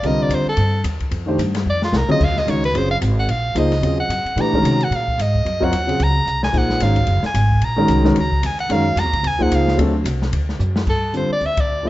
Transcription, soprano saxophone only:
X:1
M:4/4
L:1/8
Q:"Swing" 1/4=222
K:Fmix
V:1 name="Soprano saxophone"
e d c A3 z2 | z4 d F B e | [K:Ebdor] f e d _c =c f z g | f2 e3 g3 |
b3 g f2 e2- | e g3 b3 a | g2 f3 a3 | b3 z b2 a g |
f2 b2 a g f2 | z8 | [K:Cdor] A2 c d =e d2 z |]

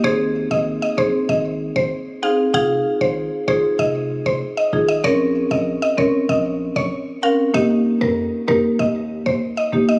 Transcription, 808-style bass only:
X:1
M:4/4
L:1/16
Q:1/4=96
K:Fm
V:1 name="808-style bass" clef=bass
A,,,3 A,,,2 z B,,, z A,,,3 A,,, z4 | F,,,2 z A,,,2 z A,,, z F,,,3 F,,, z2 A,,,2 | B,,,3 B,,,2 z C,, z B,,,3 B,,, z4 | E,,2 z F,,2 z F,, z E,,3 E,, z2 G,,,2 |]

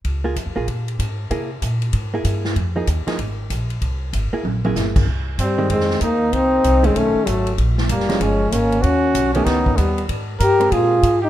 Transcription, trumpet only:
X:1
M:4/4
L:1/16
Q:"Swing" 1/4=191
K:Cphr
V:1 name="Trumpet"
z16 | z16 | z16 | z16 |
[K:Fm] z4 C4 C4 E4 | E6 C2 ^C4 =A,3 z | z4 B,4 D4 D4 | ^F6 D2 E4 =B,3 z |
z4 B4 A6 G2 |]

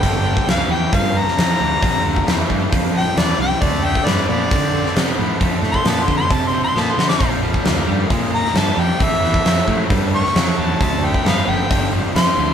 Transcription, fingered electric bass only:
X:1
M:4/4
L:1/8
Q:1/4=134
K:Dm
V:1 name="Fingered electric bass" clef=bass
G,,,2 C,, E,, G,,2 F,, D,, | B,,, D,, E,, G,, F,,2 E,, C,, | D,,2 G,, B,, D,2 C, A,, | F,, A,, B,, D, C,2 B,, D, |
B,,,2 D,, G,, B,,2 G,, F,, | A,,, E,, F,, A,, G,,2 F,, E,, | D,,2 G,, ^F,,, G,,,2 =F,, D,, |]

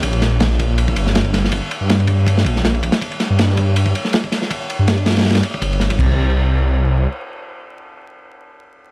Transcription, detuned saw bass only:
X:1
M:4/4
L:1/16
Q:"Swing 16ths" 1/4=161
K:Gm
V:1 name="Detuned saw bass" clef=bass
B,,,8- B,,,2 G,,,6- | G,,, z2 G,,6- G,, B,,,2 B,,,3 z | z3 G,,6- G,, z6 | z3 G,,6- G,, z2 G,,,4 |
C,,12 z4 | z16 |]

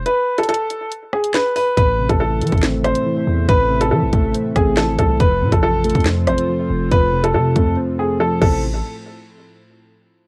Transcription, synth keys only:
X:1
M:4/4
L:1/8
Q:1/4=140
K:Am
V:1 name="Synth keys" clef=bass
z8 | A,, C, E, A, C2 E,2 | A,, C, E, A, C2 E,2 | F,, C, F, A, C2 F,2 |
F,, C, F, A, C2 F, [C,E,A,C] | z8 |]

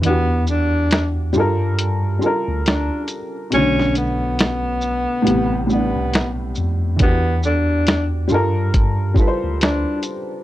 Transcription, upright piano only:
X:1
M:4/4
L:1/8
Q:"Swing 16ths" 1/4=69
K:Em
V:1 name="Upright piano"
[E,DFG]3 [G,=FA_B]2 [G,FAB]2 z | [B,,D,A,^C]3 z [A,,=C,G,B,] [A,,G,B,D]2 z | [E,DFG]3 [G,=FA_B]2 [G,FA=Bc]2 z |]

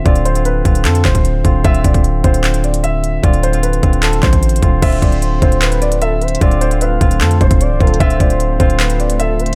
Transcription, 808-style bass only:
X:1
M:4/4
L:1/16
Q:1/4=151
K:Ddor
V:1 name="808-style bass" clef=bass
D,,,6 D,,,2 F,,2 D,,,4 D,,,2 | D,,,2 D,,,4 D,,,8- D,,,2 | D,,,6 D,,,4 A,,,4 D,,,2 | D,,,2 D,,,4 D,,,8- D,,,2 |
D,,,6 D,,,2 F,,2 D,,, D,,,2 C,,, D,,,2 | D,,,2 D,,,4 D,,,8- D,,,2 |]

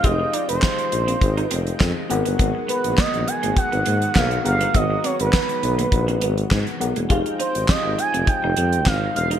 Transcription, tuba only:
X:1
M:4/4
L:1/16
Q:1/4=102
K:Ablyd
V:1 name="Tuba" clef=bass
F,,,2 z F,,, z2 B,,,2 A,,,2 F,,,2 F,, z A,,, G,,, | A,,, z2 B,,, z B,,, z A,,, z A,,, A,,2 _C,,2 G,,,2 | A,,,2 z A,,, z2 _C,,2 B,,,2 A,,,2 A,, z C,, =E,,, | F,,, z2 A,,, z A,,, z F,,, z F,,, F,,2 A,,,2 =E,,,2 |]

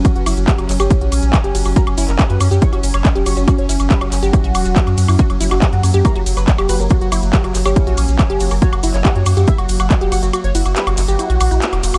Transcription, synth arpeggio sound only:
X:1
M:4/4
L:1/16
Q:1/4=140
K:F#
V:1 name="Synth arpeggio sound"
F z =E z =G F z G E F z3 G F F | F z =E z =G F z G E F z3 G F F | F z =E z =G F z G E F z F z2 f E | F z =E z =G F z G E F z3 G F A |
F z =E z =G F z G E F z3 G F A | F z =E z =G F z G E F z3 G F A | F z =E z =G F z G E F z E z2 F F |]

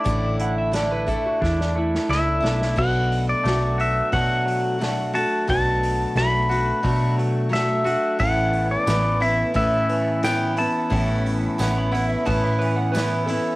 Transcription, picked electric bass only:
X:1
M:4/4
L:1/8
Q:1/4=88
K:Bm
V:1 name="Picked electric bass" clef=bass
A,,,4 E,,2 C,, B,,, | B,,,2 B,,,2 B,,4 | B,,,2 B,,,2 B,,4 | A,,,2 A,,,2 A,,4 |
A,,,2 A,,,2 A,,4 |]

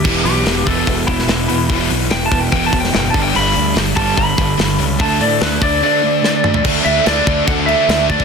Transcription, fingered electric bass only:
X:1
M:4/4
L:1/8
Q:1/4=146
K:Dmix
V:1 name="Fingered electric bass" clef=bass
E,,, B,,, E,,, E,,, E,,, E,,, E,,, E,, | E,,, B,,, E,,, E,,, E,,, E,,, F,,, G,,, | G,,, D,, G,,, G,,, G,,, G,,, G,,, ^C,, | D,, A,, D,, D,, z4 |
D,, D,, D,, D,, D,,2 D,,2 |]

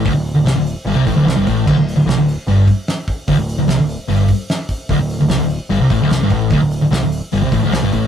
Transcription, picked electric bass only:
X:1
M:4/4
L:1/16
Q:1/4=149
K:Clyd
V:1 name="Picked electric bass" clef=bass
D,,, D,,,2 D,,, C,, D,,,2 z G,,, C,, A,,, D,,, C,, G,,, A,,,2 | D,,, D,,,2 D,,, C,, D,,,2 z G,,,2 z6 | D,,, D,,,2 D,,, C,, D,,,2 z G,,,2 z6 | D,,, D,,,2 D,,, C,, D,,,2 z G,,, C,, A,,, D,,, C,, G,,, A,,,2 |
D,,, D,,,2 D,,, C,, D,,,2 z G,,, C,, A,,, D,,, C,, G,,, A,,,2 |]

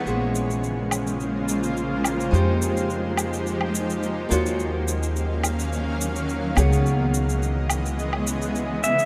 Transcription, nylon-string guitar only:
X:1
M:4/4
L:1/8
Q:"Swing 16ths" 1/4=106
K:Bbm
V:1 name="Nylon-string guitar"
[B,DFAc]8 | [A,EF=Gc]6- [A,EFGc] [B,EF_Gd]- | [B,EFGd]6- [B,EFGd] [_CE_FAd]- | [_CE_FAd]8 |]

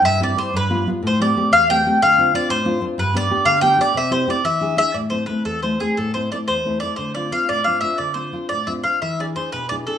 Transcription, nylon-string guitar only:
X:1
M:6/8
L:1/8
Q:3/8=120
K:C
V:1 name="Nylon-string guitar"
G,, [G,CE] [G,CE] G,, [G,B,F] [G,B,F] | A,, [A,CG] [A,CG] E,, [A,CG] [A,CG] | D, [CDF] [CDF] A,, [CDF] [CDF] | G,, [B,DG] [B,DG] D, [B,DG] [B,DG] |
C, [CEG] [CEG] E, [DE^G] [DEG] | [K:Am] A,, [A,CE] [A,CE] E,, [A,CE] [A,CE] | A,, [A,CE] [A,CE] E,, [A,CE] [A,CE] | D, [CDF] [CDF] A,, [CDF] [CDF] |
D, [CDF] [CDF] A,, [CDF] [CDF] | E, [DE^G] [DEG] B,, [DEG] [DEG] |]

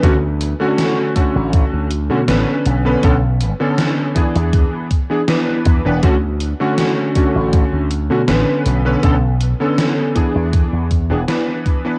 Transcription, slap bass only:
X:1
M:4/4
L:1/16
Q:1/4=80
K:Dlyd
V:1 name="Slap bass" clef=bass
D,,3 z4 A,,, z D,,2 B,, A,,, z B,,, z | B,,,3 z4 E,, z6 E,, E,,, | D,,3 z4 A,,, z D,,2 B,, A,,, z B,,, z | B,,,3 z4 E,, z E,,2 E,,, z4 |]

